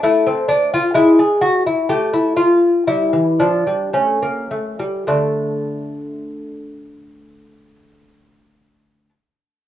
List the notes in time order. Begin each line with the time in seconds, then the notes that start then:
0.03 A3 E4
0.26 C4
0.48 D4
0.74 F4
0.94 G#3 E4
1.19 G#4
1.42 F#4
1.67 E4
1.89 A3 G4
2.14 E4
2.37 F4
2.88 G3 E4
3.13 E3
3.39 F3 D4
3.67 G3
3.93 A3 C#4
4.22 A#3
4.51 A3
4.79 G3
5.07 D3 A3 D4